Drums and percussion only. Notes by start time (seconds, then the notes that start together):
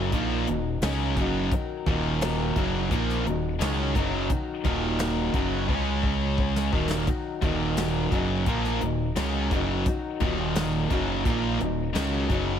0.12 kick, closed hi-hat
0.47 closed hi-hat
0.82 snare, closed hi-hat
1.17 kick, closed hi-hat
1.52 kick, closed hi-hat
1.86 kick, closed hi-hat
2.21 snare, closed hi-hat
2.56 kick, closed hi-hat
2.91 kick, closed hi-hat
3.10 snare
3.26 closed hi-hat
3.61 snare, closed hi-hat
3.95 kick, closed hi-hat
4.30 kick, closed hi-hat
4.65 kick, closed hi-hat
4.99 snare, closed hi-hat
5.34 kick, closed hi-hat
5.69 kick
6.03 kick
6.38 kick
6.56 snare
6.73 kick
6.91 snare
7.07 kick, closed hi-hat
7.42 kick, closed hi-hat
7.77 snare, closed hi-hat
8.12 kick, closed hi-hat
8.46 kick, closed hi-hat
8.65 snare
8.81 closed hi-hat
9.16 snare, closed hi-hat
9.51 kick, closed hi-hat
9.86 kick, closed hi-hat
10.20 kick, closed hi-hat
10.55 snare, closed hi-hat
10.90 kick, closed hi-hat
11.25 kick, closed hi-hat
11.60 closed hi-hat
11.95 snare, closed hi-hat
12.30 kick, closed hi-hat